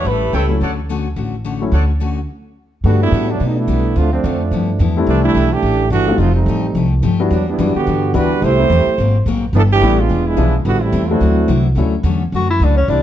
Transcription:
0.04 A1 A2 G3 A3 C#4 E4 G4 B4
0.33 C#2 A2 G3 C#4 E4 A4 C#5 E5 G5
0.49 F#3 A3 C#4 E4
0.61 D2 D3 A3 C#4 F#4 A4 C#5 D5 F#5
0.89 D3 A3 C#4 F#4
1.16 A1 D3 A3 C#4 F#4
1.45 D3 A3 C#4 F#4
1.61 F#3 A3 C#4 E4
1.72 D2 D3 A3 C#4 F#4 A4 C#5 D5 F#5
2.00 D3 A3 C#4 F#4
2.84 G2 D3 G3 A3 B3 D4 F#4 A4
3.02 A3 B3 D4 E4
3.12 A2 G3 B3 F#4 A4
3.29 F#3 A3 B3 D4
3.40 B2 G3 B3 F#4 A4
3.48 D#4
3.57 A3 B3 D4 E4
3.67 B1 G3 B3 F#4 A4
3.96 D2 D3 A3 C4 D4 F4
4.13 F3 A3 C4 D4
4.24 F2 D3 A3 C4 F4
4.51 G2 F3 B3 E4
4.79 E2 G2 F3 B3 E4
4.97 G3 A3 C4 D4 E4
5.06 C2 C3 E3 G3 A3 D4
5.11 D4
5.23 G3 A3 D4 E4
5.35 B1 C3 E3 A3 D4
5.51 E3 A3 D4 G4
5.62 A1 C3 E3 A3 D4
5.90 G1 C3 E3 A3 D4 F#4
6.08 G3 A3 C4 D#4 F4
6.18 F1 F3 A3 C4 D#4 F4 G4
6.34 G3 A3 C4 D#4
6.46 A1 F3 A3 D#4 G4
6.75 C2 F3 A3 D#4 G4
7.03 G2 F3 A3 D#4 G4
7.20 G3 B3 D4 E4 F#4
7.31 E2 E3 F#3 G3 B3 D4 F#4
7.49 G3 B3 D4 E4
7.58 F#2 E3 G3 B3 D4 E4 F#4
7.75 D3 B3 F#4 G4, muted upright bass stroke
7.87 G2 E3 G3 D4 F#4
8.14 D2 E3 G3 B3 D4 E4 F#4 B4
8.42 C2 A2 G3 A3 C4 E4 G4 C5
8.59 A3 B3 C4 E4 G4
8.70 E2 A2 G3 C4 E4
8.87 muted upright bass stroke
8.98 G#1 G#2 F#3 A#3 C4
9.26 A#1 G#2 F#3 A#3 C4
9.53 G1 E3 G3 B3 D4 E4 A4
9.72 E3 B3 D4 G4
9.81 A1 G3 A3 B3 D4 E4 A4
9.99 G#3 B3 D4 F4
10.09 E1 E3 G#3 D4 F4
10.26 G#3 B3 D4 E4
10.37 B1 E3 F3 G#3 B3 D4 E4 F4
10.65 A1 A2 D3 G3 B3 C4 E4 F#4
10.81 G3 A3 C4 E4
10.92 E2 A2 G3 C4 E4
11.09 E3 F#3 A3 C4 D4 E4 F#4
11.20 D2 D3 F#3 C4 E4
11.48 C2 D3 F#3 C4 E4
11.75 D2 D3 F#3 A3 C#4 D4 E4
12.03 E2 D3 F#3 A3 C#4
12.32 F#2 D3 F#3 A3 C#4 F#4
12.50 E4
12.60 C#2 D3 F#3 A3 C#4 D4
12.77 C#4
12.88 C2 C3 E3 G3 A#3 C4 D4 E4

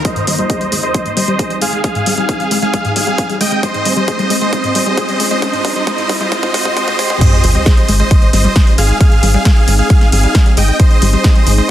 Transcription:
0.05 G#3 C4 D#4 G#4 C5 D#5, kick, closed hi-hat, riser
0.16 G#2, closed hi-hat
0.27 G#1 G3, open hi-hat
0.39 G3 C5 D#5, closed hi-hat
0.50 G#4, kick, closed hi-hat
0.61 G3, closed hi-hat
0.72 G#1 G#3, open hi-hat
0.83 G#3 C5 D#5, closed hi-hat
0.94 G#3, kick, closed hi-hat
1.06 G#2, closed hi-hat
1.17 G#1 G3 C5 D#5, open hi-hat
1.28 G3, closed hi-hat
1.39 G#4, kick, closed hi-hat
1.50 G3, closed hi-hat
1.62 G#1 G#3 G#4 F5, open hi-hat
1.73 G#3, closed hi-hat
1.84 G#3 G#4 F5, kick, closed hi-hat
1.95 G#2, closed hi-hat
2.06 G#1 G3, open hi-hat
2.17 G3 G#4 F5, closed hi-hat
2.29 G#4, kick, closed hi-hat
2.40 G3, closed hi-hat
2.51 G#1 G#3, open hi-hat
2.62 G#3 G#4 F5, closed hi-hat
2.74 G#3, kick, closed hi-hat
2.85 G#2, closed hi-hat
2.96 G#1 G3 G#4 F5, open hi-hat
3.07 G3, closed hi-hat
3.18 G#4, kick, closed hi-hat
3.30 G3, closed hi-hat
3.41 G#1 G#3 D#5 G5, open hi-hat
3.52 G#3, closed hi-hat
3.63 G#3 F4 C5 D#5, kick, closed hi-hat
3.74 G#2, closed hi-hat
3.85 G#1 G3, open hi-hat
3.97 G3 C5 D#5, closed hi-hat
4.08 G#4, kick, closed hi-hat
4.19 G3, closed hi-hat
4.30 G#1 G#3, open hi-hat
4.41 G#3 C5 D#5
4.53 G#3 C5 D#5, kick, closed hi-hat
4.64 G#2, closed hi-hat
4.75 G#1 G3, open hi-hat
4.86 G3 C5 D#5, closed hi-hat
4.97 G#4, kick, closed hi-hat
5.09 G3, closed hi-hat
5.20 G#1 G#3, open hi-hat
5.31 G#3 C5 D#5, closed hi-hat
5.42 G#3 C5 D#5, kick, closed hi-hat
5.53 G#2, closed hi-hat
5.65 G#1 G3, kick, open hi-hat
5.76 G3 C5 D#5, closed hi-hat
5.87 G#3 C5 D#5, kick, closed hi-hat
5.98 G#2, closed hi-hat
6.09 G#1 G3, kick, open hi-hat
6.21 G3 C5 D#5, closed hi-hat
6.32 G#3 C5 D#5, kick, closed hi-hat
6.43 G#2, kick, closed hi-hat
6.54 G#1 G#3 C5 D#5, kick, open hi-hat
6.65 G#2, kick
6.77 G#3 C5 D#5, kick, closed hi-hat
6.88 G#2, kick, closed hi-hat
6.99 G#1 G#3 C5 D#5, kick, open hi-hat
7.10 G#2, kick, closed hi-hat
7.21 G#3 C4 D#4 G#4 C5 D#5, kick, closed hi-hat, ride, crash, sub drop
7.33 G#2, closed hi-hat
7.44 G#1 G3, open hi-hat, ride
7.55 G3 C5 D#5, closed hi-hat
7.66 G#4, kick, snare, closed hi-hat, ride
7.77 G3, closed hi-hat
7.88 G#1 G#3, open hi-hat, ride
8.00 G#3 C5 D#5, closed hi-hat
8.11 G#3, kick, closed hi-hat, ride
8.22 G#2, closed hi-hat
8.33 G#1 G3 C5 D#5, snare, open hi-hat, ride
8.45 G3, closed hi-hat
8.56 G#4, kick, snare, closed hi-hat, ride
8.67 G3, closed hi-hat
8.78 G#1 G#3 G#4 F5, open hi-hat, ride
8.89 G#3, closed hi-hat
9.01 G#3 G#4 F5, kick, closed hi-hat, ride
9.12 G#2, closed hi-hat
9.23 G#1 G3, open hi-hat, ride
9.34 G3 G#4 F5, closed hi-hat
9.45 G#4, kick, snare, closed hi-hat, ride
9.56 G3, closed hi-hat
9.68 G#1 G#3, open hi-hat, ride
9.79 G#3 G#4 F5, closed hi-hat
9.90 G#3, kick, closed hi-hat, ride
10.01 G#2, snare, closed hi-hat
10.12 G#1 G3 G#4 F5, open hi-hat, ride
10.24 G3, closed hi-hat
10.35 G#4, kick, snare, closed hi-hat, ride
10.46 G3, closed hi-hat
10.57 G#1 G#3 D#5 G5, open hi-hat, ride
10.68 G#3
10.80 G#3 C5 D#5, kick, closed hi-hat, ride
10.91 G#2, closed hi-hat
11.02 G#1 G3, open hi-hat, ride
11.13 G3 C5 D#5, closed hi-hat
11.24 G#4, kick, snare, closed hi-hat, ride
11.35 G3, closed hi-hat
11.47 G#1 G#3, open hi-hat, ride
11.58 G#3 C5 D#5, closed hi-hat

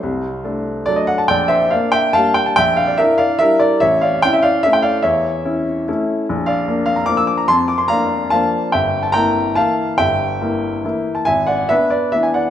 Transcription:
Already playing: A4 C5
0.03 C2
0.44 A3 D4
0.86 F#3 A3 D4 D5
0.96 D#5
1.07 F#5
1.18 A5
1.28 A#1 D5 G5
1.48 C5 E5
1.71 A#3 D4 D5 F5
1.92 E5 G5
2.13 G3 A#3 D4 F5 A5
2.34 G5
2.46 A5
2.56 A#1 E5 G5
2.77 F5
2.87 D5
2.98 D4 E4 A#4 E5
3.18 D5 F5
3.39 G3 D4 E4 A#4 E5
3.60 A#4 D5
3.80 A1 C#5 E5
4.01 D5 F5
4.22 C#4 E4 G5
4.33 E5
4.42 D5 F5
4.63 A3 C#4 E4 E5
4.73 G5
4.82 D5 F5
5.02 E2 C#5 E5
5.45 C#4 E4
5.88 A3 C#4 E4
6.29 A#1
6.46 D5 F5
6.68 A#3 D4
6.86 F5
6.96 A#5
7.06 F3 A#3 D4 D6
7.17 E6
7.27 D6
7.38 A#5
7.48 F2 A5 C6
7.68 D6
7.78 C6
7.88 A#3 D4 F5 A#5
8.30 F3 A#3 D4 F5 A5
8.72 G1 E5 G5
9.03 A5
9.12 A#3 E4 G5 A#5
9.55 E3 A#3 E4 F5 A5
9.98 G1 E5 G5
10.41 A#3 E4
10.84 E3 A#3 E4
11.15 A5
11.25 G#1 E5 G#5
11.47 D5 F#5
11.69 B3 D4 B4 E5
11.90 B4 D5
12.12 E3 B3 D4 E5
12.23 G#5
12.34 D5 F#5

